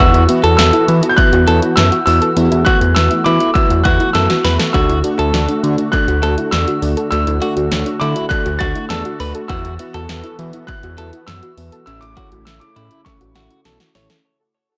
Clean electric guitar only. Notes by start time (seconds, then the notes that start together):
0.00 F#4
0.44 A4
1.48 A4
2.66 F#4
3.26 E4
3.85 F#4
4.15 A4
4.45 B4
4.74 F#4
5.19 A4
6.23 A4
7.42 F#4
8.01 E4
8.60 F#4
8.90 A4
9.20 B4
9.50 F#4
9.94 A4
10.98 A4
12.17 F#4
12.76 E4
13.36 F#4
13.65 A4
13.95 C#5